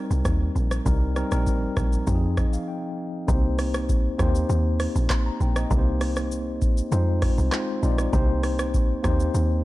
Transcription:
Already playing: G3 C4 D#4 A#4
0.11 C2, shaker
0.25 D#2, kick, cross-stick, shaker
0.56 A#1, shaker
0.71 cross-stick, shaker
0.85 C2 G3 C4 D#4 A#4, kick, shaker
1.15 G3 C4 D#4 A#4, cross-stick, shaker
1.31 A#1 G3 C4 D#4 A#4, cross-stick, shaker
1.47 kick, shaker
1.77 A#1, kick, cross-stick, shaker
1.93 shaker
2.06 F2 F3 C4 D#4 G4, kick, shaker
2.15 G#4
2.37 D#5, kick, cross-stick, shaker
2.53 F5, shaker
2.68 G5
3.27 C2 A#3 C4 D#4 G4 C5, kick, shaker
3.59 cross-stick, open hi-hat, shaker
3.74 cross-stick, shaker
3.89 kick, shaker
4.18 D#2 A#3 C4 D#4 G4 C5, kick, cross-stick, shaker
4.35 shaker
4.49 D#2, shaker
4.80 cross-stick, open hi-hat, shaker
4.96 A#1, shaker
5.10 kick, cross-stick, clap, shaker
5.26 A#5
5.40 A#1 G5, shaker
5.56 D#5, cross-stick, shaker
5.69 C2 A#3 C4 D#4 G4 B4, kick, shaker
5.78 C5
6.01 cross-stick, open hi-hat, shaker
6.16 cross-stick, shaker
6.32 shaker
6.62 D#2, kick, shaker
6.77 shaker
6.91 F2 G3 C4 D#4 F4 C5, shaker
6.97 G#3
7.22 kick, cross-stick, open hi-hat, shaker
7.38 C2, shaker
7.51 G#3 C4 D#4 F4 C5, cross-stick, clap, shaker
7.82 A#1 G#3 C4 D#4 F4 D5, shaker
7.98 cross-stick, shaker
8.12 C2 A#3 C4 D#4 G4 C5, kick, shaker
8.43 cross-stick, open hi-hat, shaker
8.59 cross-stick, shaker
8.74 kick, shaker
9.03 D#2 A#3 C4 D#4 G4 C5, kick, cross-stick, shaker
9.20 shaker
9.34 D#2, shaker

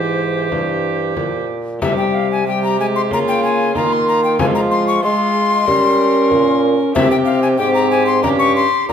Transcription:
Already playing: G#2 E3 G4 C5
0.51 G2, frame drum
1.17 A#2, frame drum
1.82 C3 G3 G4 E5, frame drum
1.98 G5
2.15 F5
2.32 G#5
2.46 G3 G4 G5
2.64 A#5
2.78 G#3 G#5
2.95 C6
3.10 C#3 A#3 F4 A#5, frame drum
3.28 G5
3.44 G#5
3.74 D#3 A#3 F4 A#5, frame drum
3.93 C6
4.08 A#5
4.24 G5
4.38 F3 G#3 F4 G#5, frame drum
4.55 A#5
4.71 C6
4.87 C#6
5.01 G#3 F4 C6
5.66 G3 C#4 A#4, frame drum
6.31 A#2, frame drum
6.95 C3 C4 G4 E5, frame drum
7.11 G5
7.25 F5
7.42 G#5
7.57 G#2 C4 G4 G5
7.74 A#5
7.91 G#5
8.07 C6
8.23 G2 C#4 G4 A#5, frame drum
8.39 C#6
8.56 C6
8.88 A#2 C#4 G4 A#5, frame drum

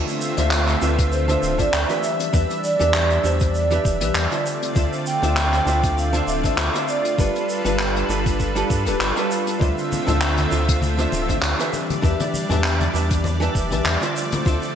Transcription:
Already playing: D3 A3 C4 D4 F4 C5 E5
0.08 shaker
0.21 shaker
0.37 D2 D3 D4 F4 C5 E5, closed hi-hat, shaker
0.51 clap, shaker
0.68 clap, closed hi-hat, shaker
0.81 D2 D3 C4 D4 F4 B4 E5, shaker
0.99 kick, closed hi-hat, shaker
1.12 C5, shaker
1.28 D3 D4 F4 C5 E5, closed hi-hat, shaker
1.43 D1, shaker
1.58 A1 D3 D4 F4 C5 D5 E5, kick, closed hi-hat, shaker
1.73 D2, clap, shaker
1.89 E3 D4 G4 B4 E5, closed hi-hat, shaker
2.03 G3 D4 E5, shaker
2.20 closed hi-hat, shaker
2.33 E2 E3 D4 G4 B4 E5, kick, shaker
2.50 closed hi-hat, shaker
2.64 D5, shaker
2.79 E2 E3 D4 G4 B4 E5, closed hi-hat, shaker
2.94 clap, shaker
3.10 closed hi-hat, shaker
3.23 E2 E3 D4 G4 C5 D5 E5, shaker
3.40 kick, closed hi-hat, shaker
3.55 D5, shaker
3.70 E3 D4 G4 B4 E5, closed hi-hat, shaker
3.85 E1, kick, shaker
4.01 B1 E3 D4 G4 B4 E5, closed hi-hat, shaker
4.14 E2, clap, shaker
4.31 D3 D4 F4 C5 E5, closed hi-hat, shaker
4.46 D3 A3 C4 F4 D5, shaker
4.62 closed hi-hat, shaker
4.75 D2 D3 D4 F4 C5 E5, kick, shaker
4.93 shaker
5.06 G5, shaker
5.22 D2 D3 D4 F4 C5 E5, closed hi-hat, shaker
5.37 clap, shaker
5.53 clap, closed hi-hat, shaker
5.66 D2 D3 D4 F4 C5 E5, shaker
5.83 kick, closed hi-hat, shaker
5.98 F5, shaker
6.13 D3 D4 F4 C5 E5, closed hi-hat, shaker
6.27 D1 E5, shaker
6.43 A1 D3 D4 F4 C5 E5, kick, closed hi-hat, shaker
6.57 D2, clap, shaker
6.73 D3 D4 F4 C5 E5, closed hi-hat, shaker
6.89 D5, shaker
7.05 closed hi-hat, shaker
7.18 G1 G3 D4 F4 A4 B4, kick, shaker
7.35 closed hi-hat, shaker
7.49 B4, shaker
7.65 G1 G3 D4 F4 A4 B4, closed hi-hat, shaker
7.79 clap, shaker
7.96 closed hi-hat, shaker
8.09 G1 G3 D4 F4 A4 B4, shaker
8.26 kick, closed hi-hat, shaker
8.40 kick, shaker
8.55 G3 D4 F4 A4 B4, closed hi-hat, shaker
8.70 G2, kick, shaker
8.86 D1 G3 D4 F4 A4 B4, closed hi-hat, shaker
9.00 G1, clap, shaker
9.16 G3 D4 F4 A4 B4, closed hi-hat, shaker
9.31 shaker
9.47 closed hi-hat, shaker
9.59 D2 D3 A3 C4 D4 F4 C5 E5, kick, muted conga, shaker
9.78 shaker
9.92 high conga, shaker
10.06 D2 D3 D4 F4 C5 E5, closed hi-hat, muted conga, low conga, shaker
10.22 clap, shaker
10.37 clap, closed hi-hat, high conga, shaker
10.51 D2 D3 D4 F4 C5 E5, shaker
10.69 kick, closed hi-hat, muted conga, shaker
10.82 high conga, shaker
10.97 D3 D4 F4 C5 E5, closed hi-hat, shaker
11.12 D1, muted conga, shaker
11.28 A1 D3 D4 F4 C5 E5, kick, closed hi-hat, high conga, shaker
11.42 D2, clap, shaker
11.59 E3 D4 G4 B4 E5, closed hi-hat, shaker
11.73 G3 D4 D5, muted conga, shaker
11.90 closed hi-hat, high conga, shaker
12.02 E2 E3 D4 G4 B4 E5, kick, shaker
12.20 closed hi-hat, muted conga, shaker
12.34 high conga, shaker
12.49 E2 E3 D4 G4 B4 E5, closed hi-hat, low conga, shaker
12.64 clap, shaker
12.80 closed hi-hat, muted conga, high conga, shaker
12.93 E2 E3 D4 G4 B4 E5, shaker
13.11 kick, closed hi-hat, shaker
13.24 muted conga, high conga, shaker
13.40 E3 D4 G4 B4 E5, closed hi-hat, shaker
13.55 E1, kick, shaker
13.70 B1 E3 D4 G4 B4 E5, closed hi-hat, high conga, shaker
13.85 E2, clap, muted conga, shaker
14.01 D3 D4 F4 C5 E5, closed hi-hat, shaker
14.16 D3 F3 A3 C4, shaker
14.32 closed hi-hat, muted conga, high conga, shaker
14.45 D2 D3 D4 F4 C5 E5, kick, shaker
14.62 shaker

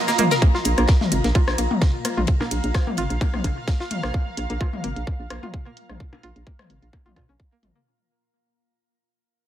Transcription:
Already playing: A#3 F4 D#5 A#5
0.08 A#3, snare, ride, shaker
0.18 A#3, closed hi-hat, mid tom, ride
0.31 A#4, snare, ride, shaker
0.42 A#3, kick, ride
0.54 F4, snare
0.61 F5, ride
0.65 A#1, closed hi-hat
0.78 A#1 A#3, cross-stick, closed hi-hat
0.88 kick, snare, ride
1.01 snare, mid tom
1.12 G#1, closed hi-hat, ride
1.24 A#1 A#3, snare, closed hi-hat
1.35 F4, kick, ride
1.47 A#1, cross-stick, snare
1.58 A#1 A#3, closed hi-hat, ride
1.71 mid tom
1.82 kick, snare, ride
2.05 A#3, cross-stick, closed hi-hat, ride
2.17 A#1 F4, mid tom
2.27 kick, ride
2.41 A#3, snare, percussion blips
2.51 A#1, closed hi-hat, ride
2.64 A#1, closed hi-hat
2.74 kick, cross-stick, snare, ride
2.87 A#3, mid tom
2.97 G#1 F4, closed hi-hat, ride
3.10 A#1, closed hi-hat
3.21 A#3, kick, ride, percussion blips
3.34 A#1, cross-stick, mid tom
3.44 A#1, kick, closed hi-hat, ride, percussion blips
3.68 A#3, kick, snare, ride
3.80 F4, snare
3.91 closed hi-hat, mid tom, ride
4.03 A#1 A#3, cross-stick, snare
4.14 kick
4.37 A#1, closed hi-hat
4.50 A#1 A#3, closed hi-hat
4.61 F4, kick, cross-stick
4.73 mid tom
4.84 G#1 A#3, closed hi-hat
4.96 A#1, closed hi-hat
5.07 kick
5.20 A#1
5.30 A#1 A#3, cross-stick, closed hi-hat
5.43 F4, mid tom
5.54 kick
5.66 A#3
5.77 closed hi-hat
5.89 A#1, cross-stick, mid tom
6.00 kick
6.13 A#3, percussion blips
6.23 A#1 F4, closed hi-hat
6.36 A#1, closed hi-hat
6.47 A#3, kick
6.59 cross-stick, mid tom
6.70 G#1, closed hi-hat
6.82 A#1, closed hi-hat
6.93 A#3, kick, percussion blips
7.06 A#1 F4, mid tom
7.16 A#2 F4, kick, cross-stick, closed hi-hat, percussion blips
7.29 A#1 C#4
7.40 kick
7.52 A#3
7.63 G#1, closed hi-hat, mid tom
7.75 A#3

